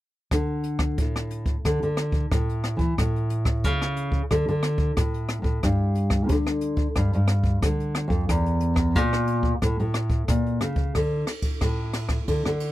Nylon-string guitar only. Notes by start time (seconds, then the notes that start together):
0.31 D3
0.98 A2
1.65 D3
1.83 D3
2.32 A2
2.77 E3
2.98 A2
3.64 C#3
4.31 D3
4.49 D3
4.97 A2
5.42 A2
5.63 G2
6.30 D3
6.96 G2
7.15 G2
7.63 D3
8.08 F2
8.29 E2
8.96 A#2
9.62 A2
9.80 A2
10.29 A#2
10.61 C#3
10.95 D3
11.62 A2
12.28 D3
12.46 D3